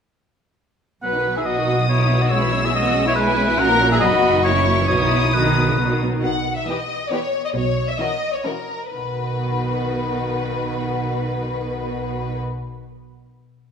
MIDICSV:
0, 0, Header, 1, 7, 480
1, 0, Start_track
1, 0, Key_signature, 5, "major"
1, 0, Tempo, 428571
1, 1156, Time_signature, 3, 2, 24, 8
1, 4983, Tempo, 443131
1, 8823, Tempo, 480769
1, 14537, End_track
2, 0, Start_track
2, 0, Title_t, "Violin section"
2, 0, Program_c, 0, 48
2, 1636, Note_on_c, 0, 87, 50
2, 2556, Note_off_c, 0, 87, 0
2, 2607, Note_on_c, 0, 88, 55
2, 3554, Note_on_c, 0, 80, 60
2, 3557, Note_off_c, 0, 88, 0
2, 4017, Note_on_c, 0, 82, 65
2, 4030, Note_off_c, 0, 80, 0
2, 4497, Note_off_c, 0, 82, 0
2, 4499, Note_on_c, 0, 83, 66
2, 4971, Note_on_c, 0, 85, 64
2, 4981, Note_off_c, 0, 83, 0
2, 5452, Note_off_c, 0, 85, 0
2, 5454, Note_on_c, 0, 87, 64
2, 6670, Note_off_c, 0, 87, 0
2, 6914, Note_on_c, 0, 78, 60
2, 7245, Note_off_c, 0, 78, 0
2, 7291, Note_on_c, 0, 76, 46
2, 7396, Note_on_c, 0, 75, 57
2, 7399, Note_off_c, 0, 76, 0
2, 7864, Note_on_c, 0, 73, 58
2, 7866, Note_off_c, 0, 75, 0
2, 8222, Note_off_c, 0, 73, 0
2, 8236, Note_on_c, 0, 75, 54
2, 8281, Note_off_c, 0, 75, 0
2, 8329, Note_on_c, 0, 73, 63
2, 8687, Note_off_c, 0, 73, 0
2, 8704, Note_on_c, 0, 76, 53
2, 8817, Note_on_c, 0, 75, 64
2, 8824, Note_off_c, 0, 76, 0
2, 9167, Note_off_c, 0, 75, 0
2, 9170, Note_on_c, 0, 73, 43
2, 9287, Note_on_c, 0, 70, 41
2, 9288, Note_off_c, 0, 73, 0
2, 9773, Note_on_c, 0, 71, 36
2, 9776, Note_off_c, 0, 70, 0
2, 13203, Note_off_c, 0, 71, 0
2, 14537, End_track
3, 0, Start_track
3, 0, Title_t, "Oboe"
3, 0, Program_c, 1, 68
3, 1146, Note_on_c, 1, 78, 56
3, 1486, Note_off_c, 1, 78, 0
3, 1534, Note_on_c, 1, 76, 52
3, 1633, Note_on_c, 1, 75, 53
3, 1649, Note_off_c, 1, 76, 0
3, 2110, Note_off_c, 1, 75, 0
3, 2117, Note_on_c, 1, 73, 54
3, 2488, Note_on_c, 1, 75, 55
3, 2505, Note_off_c, 1, 73, 0
3, 2587, Note_on_c, 1, 73, 60
3, 2603, Note_off_c, 1, 75, 0
3, 2973, Note_on_c, 1, 76, 64
3, 2990, Note_off_c, 1, 73, 0
3, 3077, Note_off_c, 1, 76, 0
3, 3083, Note_on_c, 1, 75, 71
3, 3430, Note_off_c, 1, 75, 0
3, 3444, Note_on_c, 1, 73, 72
3, 3496, Note_off_c, 1, 73, 0
3, 3536, Note_on_c, 1, 71, 79
3, 4023, Note_on_c, 1, 78, 92
3, 4040, Note_off_c, 1, 71, 0
3, 4382, Note_off_c, 1, 78, 0
3, 4388, Note_on_c, 1, 76, 79
3, 4475, Note_off_c, 1, 76, 0
3, 4481, Note_on_c, 1, 75, 78
3, 4962, Note_off_c, 1, 75, 0
3, 4978, Note_on_c, 1, 73, 75
3, 5443, Note_off_c, 1, 73, 0
3, 5449, Note_on_c, 1, 73, 75
3, 5948, Note_on_c, 1, 71, 60
3, 5964, Note_off_c, 1, 73, 0
3, 6674, Note_off_c, 1, 71, 0
3, 14537, End_track
4, 0, Start_track
4, 0, Title_t, "Violin section"
4, 0, Program_c, 2, 48
4, 1165, Note_on_c, 2, 71, 48
4, 1497, Note_off_c, 2, 71, 0
4, 1529, Note_on_c, 2, 68, 40
4, 1641, Note_on_c, 2, 66, 49
4, 1643, Note_off_c, 2, 68, 0
4, 2110, Note_off_c, 2, 66, 0
4, 2121, Note_on_c, 2, 64, 49
4, 2475, Note_off_c, 2, 64, 0
4, 2483, Note_on_c, 2, 66, 50
4, 2602, Note_off_c, 2, 66, 0
4, 2606, Note_on_c, 2, 64, 58
4, 2959, Note_on_c, 2, 68, 56
4, 2963, Note_off_c, 2, 64, 0
4, 3070, Note_on_c, 2, 66, 66
4, 3076, Note_off_c, 2, 68, 0
4, 3423, Note_off_c, 2, 66, 0
4, 3431, Note_on_c, 2, 64, 58
4, 3522, Note_off_c, 2, 64, 0
4, 3536, Note_on_c, 2, 64, 68
4, 4011, Note_off_c, 2, 64, 0
4, 4030, Note_on_c, 2, 70, 79
4, 4379, Note_on_c, 2, 68, 65
4, 4385, Note_off_c, 2, 70, 0
4, 4498, Note_off_c, 2, 68, 0
4, 4510, Note_on_c, 2, 66, 73
4, 4983, Note_on_c, 2, 64, 68
4, 4986, Note_off_c, 2, 66, 0
4, 5448, Note_off_c, 2, 64, 0
4, 5461, Note_on_c, 2, 64, 66
4, 5941, Note_off_c, 2, 64, 0
4, 5970, Note_on_c, 2, 63, 49
4, 6685, Note_off_c, 2, 63, 0
4, 7412, Note_on_c, 2, 71, 35
4, 7415, Note_on_c, 2, 67, 35
4, 7499, Note_off_c, 2, 71, 0
4, 7502, Note_off_c, 2, 67, 0
4, 7874, Note_on_c, 2, 71, 36
4, 7878, Note_on_c, 2, 67, 35
4, 7961, Note_off_c, 2, 71, 0
4, 7965, Note_off_c, 2, 67, 0
4, 8833, Note_on_c, 2, 70, 36
4, 8842, Note_on_c, 2, 66, 39
4, 8912, Note_off_c, 2, 70, 0
4, 8922, Note_off_c, 2, 66, 0
4, 9282, Note_on_c, 2, 70, 29
4, 9287, Note_on_c, 2, 66, 31
4, 9362, Note_off_c, 2, 70, 0
4, 9367, Note_off_c, 2, 66, 0
4, 9775, Note_on_c, 2, 71, 29
4, 9781, Note_on_c, 2, 66, 30
4, 13206, Note_off_c, 2, 71, 0
4, 13211, Note_off_c, 2, 66, 0
4, 14537, End_track
5, 0, Start_track
5, 0, Title_t, "Viola section"
5, 0, Program_c, 3, 48
5, 1151, Note_on_c, 3, 54, 33
5, 1151, Note_on_c, 3, 59, 36
5, 1266, Note_off_c, 3, 54, 0
5, 1266, Note_off_c, 3, 59, 0
5, 1277, Note_on_c, 3, 63, 30
5, 1281, Note_on_c, 3, 51, 27
5, 1397, Note_off_c, 3, 63, 0
5, 1399, Note_off_c, 3, 51, 0
5, 1404, Note_on_c, 3, 54, 35
5, 1404, Note_on_c, 3, 59, 31
5, 1521, Note_off_c, 3, 54, 0
5, 1521, Note_off_c, 3, 59, 0
5, 1532, Note_on_c, 3, 51, 33
5, 1532, Note_on_c, 3, 63, 34
5, 1644, Note_off_c, 3, 51, 0
5, 1644, Note_off_c, 3, 63, 0
5, 1645, Note_on_c, 3, 54, 35
5, 1645, Note_on_c, 3, 59, 35
5, 1752, Note_off_c, 3, 54, 0
5, 1752, Note_off_c, 3, 59, 0
5, 1754, Note_on_c, 3, 63, 36
5, 1758, Note_on_c, 3, 51, 35
5, 1875, Note_off_c, 3, 63, 0
5, 1875, Note_on_c, 3, 54, 36
5, 1876, Note_on_c, 3, 59, 33
5, 1877, Note_off_c, 3, 51, 0
5, 1983, Note_on_c, 3, 63, 37
5, 1987, Note_on_c, 3, 51, 36
5, 1996, Note_off_c, 3, 54, 0
5, 1997, Note_off_c, 3, 59, 0
5, 2110, Note_off_c, 3, 63, 0
5, 2111, Note_on_c, 3, 59, 37
5, 2113, Note_off_c, 3, 51, 0
5, 2114, Note_on_c, 3, 54, 38
5, 2226, Note_off_c, 3, 59, 0
5, 2228, Note_off_c, 3, 54, 0
5, 2238, Note_on_c, 3, 51, 36
5, 2239, Note_on_c, 3, 63, 36
5, 2354, Note_on_c, 3, 54, 37
5, 2356, Note_on_c, 3, 59, 37
5, 2360, Note_off_c, 3, 51, 0
5, 2360, Note_off_c, 3, 63, 0
5, 2471, Note_on_c, 3, 63, 39
5, 2473, Note_on_c, 3, 51, 42
5, 2478, Note_off_c, 3, 54, 0
5, 2479, Note_off_c, 3, 59, 0
5, 2584, Note_on_c, 3, 56, 45
5, 2587, Note_on_c, 3, 61, 44
5, 2596, Note_off_c, 3, 63, 0
5, 2597, Note_off_c, 3, 51, 0
5, 2704, Note_off_c, 3, 56, 0
5, 2705, Note_off_c, 3, 61, 0
5, 2706, Note_on_c, 3, 59, 38
5, 2708, Note_on_c, 3, 52, 37
5, 2818, Note_on_c, 3, 61, 43
5, 2819, Note_on_c, 3, 56, 44
5, 2833, Note_off_c, 3, 59, 0
5, 2835, Note_off_c, 3, 52, 0
5, 2941, Note_on_c, 3, 52, 43
5, 2945, Note_on_c, 3, 59, 41
5, 2949, Note_off_c, 3, 61, 0
5, 2950, Note_off_c, 3, 56, 0
5, 3066, Note_on_c, 3, 61, 44
5, 3070, Note_off_c, 3, 52, 0
5, 3071, Note_on_c, 3, 56, 50
5, 3072, Note_off_c, 3, 59, 0
5, 3180, Note_on_c, 3, 52, 44
5, 3180, Note_on_c, 3, 59, 44
5, 3183, Note_off_c, 3, 61, 0
5, 3186, Note_off_c, 3, 56, 0
5, 3294, Note_on_c, 3, 61, 49
5, 3295, Note_on_c, 3, 56, 47
5, 3307, Note_off_c, 3, 52, 0
5, 3308, Note_off_c, 3, 59, 0
5, 3421, Note_on_c, 3, 52, 53
5, 3424, Note_off_c, 3, 56, 0
5, 3424, Note_off_c, 3, 61, 0
5, 3428, Note_on_c, 3, 59, 51
5, 3535, Note_on_c, 3, 56, 53
5, 3535, Note_on_c, 3, 61, 47
5, 3547, Note_off_c, 3, 52, 0
5, 3550, Note_off_c, 3, 59, 0
5, 3654, Note_off_c, 3, 56, 0
5, 3654, Note_off_c, 3, 61, 0
5, 3658, Note_on_c, 3, 59, 51
5, 3660, Note_on_c, 3, 52, 49
5, 3772, Note_on_c, 3, 61, 46
5, 3773, Note_on_c, 3, 56, 52
5, 3785, Note_off_c, 3, 52, 0
5, 3785, Note_off_c, 3, 59, 0
5, 3887, Note_on_c, 3, 59, 51
5, 3888, Note_on_c, 3, 52, 53
5, 3901, Note_off_c, 3, 61, 0
5, 3902, Note_off_c, 3, 56, 0
5, 4006, Note_on_c, 3, 61, 57
5, 4012, Note_on_c, 3, 54, 54
5, 4018, Note_off_c, 3, 52, 0
5, 4018, Note_off_c, 3, 59, 0
5, 4117, Note_on_c, 3, 52, 48
5, 4121, Note_on_c, 3, 58, 47
5, 4128, Note_off_c, 3, 61, 0
5, 4130, Note_off_c, 3, 54, 0
5, 4228, Note_on_c, 3, 61, 54
5, 4229, Note_on_c, 3, 54, 52
5, 4251, Note_off_c, 3, 52, 0
5, 4253, Note_off_c, 3, 58, 0
5, 4352, Note_on_c, 3, 58, 53
5, 4356, Note_on_c, 3, 52, 51
5, 4366, Note_off_c, 3, 54, 0
5, 4366, Note_off_c, 3, 61, 0
5, 4475, Note_on_c, 3, 54, 54
5, 4478, Note_on_c, 3, 59, 53
5, 4487, Note_off_c, 3, 58, 0
5, 4489, Note_off_c, 3, 52, 0
5, 4591, Note_on_c, 3, 63, 50
5, 4593, Note_on_c, 3, 51, 49
5, 4599, Note_off_c, 3, 54, 0
5, 4600, Note_off_c, 3, 59, 0
5, 4713, Note_on_c, 3, 54, 49
5, 4719, Note_on_c, 3, 59, 52
5, 4726, Note_off_c, 3, 63, 0
5, 4727, Note_off_c, 3, 51, 0
5, 4834, Note_on_c, 3, 63, 53
5, 4836, Note_on_c, 3, 51, 58
5, 4847, Note_off_c, 3, 54, 0
5, 4851, Note_off_c, 3, 59, 0
5, 4960, Note_on_c, 3, 54, 50
5, 4964, Note_on_c, 3, 58, 51
5, 4969, Note_off_c, 3, 63, 0
5, 4971, Note_off_c, 3, 51, 0
5, 5082, Note_off_c, 3, 54, 0
5, 5084, Note_off_c, 3, 58, 0
5, 5085, Note_on_c, 3, 52, 49
5, 5086, Note_on_c, 3, 61, 47
5, 5206, Note_on_c, 3, 54, 45
5, 5208, Note_on_c, 3, 58, 45
5, 5214, Note_off_c, 3, 52, 0
5, 5215, Note_off_c, 3, 61, 0
5, 5332, Note_on_c, 3, 61, 50
5, 5333, Note_on_c, 3, 52, 46
5, 5337, Note_off_c, 3, 54, 0
5, 5338, Note_off_c, 3, 58, 0
5, 5456, Note_on_c, 3, 54, 46
5, 5456, Note_on_c, 3, 59, 50
5, 5462, Note_off_c, 3, 52, 0
5, 5462, Note_off_c, 3, 61, 0
5, 5575, Note_off_c, 3, 54, 0
5, 5576, Note_off_c, 3, 59, 0
5, 5576, Note_on_c, 3, 63, 38
5, 5579, Note_on_c, 3, 51, 39
5, 5699, Note_on_c, 3, 54, 45
5, 5699, Note_on_c, 3, 59, 44
5, 5705, Note_off_c, 3, 63, 0
5, 5707, Note_off_c, 3, 51, 0
5, 5827, Note_off_c, 3, 54, 0
5, 5827, Note_off_c, 3, 59, 0
5, 5828, Note_on_c, 3, 63, 41
5, 5830, Note_on_c, 3, 51, 44
5, 5939, Note_on_c, 3, 54, 47
5, 5948, Note_on_c, 3, 59, 48
5, 5952, Note_off_c, 3, 63, 0
5, 5953, Note_off_c, 3, 51, 0
5, 6058, Note_off_c, 3, 54, 0
5, 6060, Note_on_c, 3, 63, 44
5, 6062, Note_on_c, 3, 51, 43
5, 6063, Note_off_c, 3, 59, 0
5, 6185, Note_on_c, 3, 59, 44
5, 6188, Note_off_c, 3, 63, 0
5, 6189, Note_off_c, 3, 51, 0
5, 6189, Note_on_c, 3, 54, 45
5, 6310, Note_on_c, 3, 51, 48
5, 6311, Note_off_c, 3, 59, 0
5, 6312, Note_on_c, 3, 63, 49
5, 6313, Note_off_c, 3, 54, 0
5, 6424, Note_on_c, 3, 54, 45
5, 6425, Note_on_c, 3, 59, 47
5, 6433, Note_off_c, 3, 51, 0
5, 6434, Note_off_c, 3, 63, 0
5, 6542, Note_off_c, 3, 54, 0
5, 6542, Note_off_c, 3, 59, 0
5, 6549, Note_on_c, 3, 63, 46
5, 6551, Note_on_c, 3, 51, 42
5, 6674, Note_off_c, 3, 63, 0
5, 6675, Note_off_c, 3, 51, 0
5, 6679, Note_on_c, 3, 59, 43
5, 6682, Note_on_c, 3, 54, 43
5, 6799, Note_off_c, 3, 59, 0
5, 6800, Note_off_c, 3, 54, 0
5, 6800, Note_on_c, 3, 51, 47
5, 6800, Note_on_c, 3, 63, 50
5, 6918, Note_off_c, 3, 51, 0
5, 6918, Note_off_c, 3, 63, 0
5, 7380, Note_on_c, 3, 52, 37
5, 7380, Note_on_c, 3, 59, 35
5, 7466, Note_off_c, 3, 52, 0
5, 7467, Note_off_c, 3, 59, 0
5, 7854, Note_on_c, 3, 59, 36
5, 7856, Note_on_c, 3, 52, 37
5, 7941, Note_off_c, 3, 59, 0
5, 7943, Note_off_c, 3, 52, 0
5, 8809, Note_on_c, 3, 61, 39
5, 8810, Note_on_c, 3, 52, 36
5, 8890, Note_off_c, 3, 61, 0
5, 8891, Note_off_c, 3, 52, 0
5, 9277, Note_on_c, 3, 61, 29
5, 9283, Note_on_c, 3, 52, 31
5, 9357, Note_off_c, 3, 61, 0
5, 9363, Note_off_c, 3, 52, 0
5, 9763, Note_on_c, 3, 51, 31
5, 9766, Note_on_c, 3, 59, 29
5, 13194, Note_off_c, 3, 51, 0
5, 13197, Note_off_c, 3, 59, 0
5, 14537, End_track
6, 0, Start_track
6, 0, Title_t, "Cello section"
6, 0, Program_c, 4, 48
6, 1154, Note_on_c, 4, 47, 43
6, 3984, Note_off_c, 4, 47, 0
6, 4020, Note_on_c, 4, 46, 64
6, 4486, Note_on_c, 4, 42, 68
6, 4489, Note_off_c, 4, 46, 0
6, 5455, Note_on_c, 4, 47, 57
6, 5459, Note_off_c, 4, 42, 0
6, 5899, Note_off_c, 4, 47, 0
6, 5947, Note_on_c, 4, 51, 66
6, 6287, Note_off_c, 4, 51, 0
6, 6311, Note_on_c, 4, 49, 53
6, 6430, Note_on_c, 4, 47, 53
6, 6433, Note_off_c, 4, 49, 0
6, 6904, Note_off_c, 4, 47, 0
6, 6922, Note_on_c, 4, 47, 49
6, 7293, Note_off_c, 4, 47, 0
6, 8341, Note_on_c, 4, 47, 60
6, 8720, Note_off_c, 4, 47, 0
6, 9773, Note_on_c, 4, 47, 32
6, 13203, Note_off_c, 4, 47, 0
6, 14537, End_track
7, 0, Start_track
7, 0, Title_t, "Double bass section"
7, 0, Program_c, 5, 48
7, 1162, Note_on_c, 5, 35, 44
7, 3988, Note_off_c, 5, 35, 0
7, 4024, Note_on_c, 5, 34, 65
7, 4491, Note_off_c, 5, 34, 0
7, 4506, Note_on_c, 5, 30, 69
7, 5460, Note_on_c, 5, 35, 56
7, 5469, Note_off_c, 5, 30, 0
7, 6689, Note_off_c, 5, 35, 0
7, 6927, Note_on_c, 5, 35, 50
7, 7296, Note_off_c, 5, 35, 0
7, 8356, Note_on_c, 5, 35, 56
7, 8728, Note_off_c, 5, 35, 0
7, 9781, Note_on_c, 5, 35, 29
7, 13212, Note_off_c, 5, 35, 0
7, 14537, End_track
0, 0, End_of_file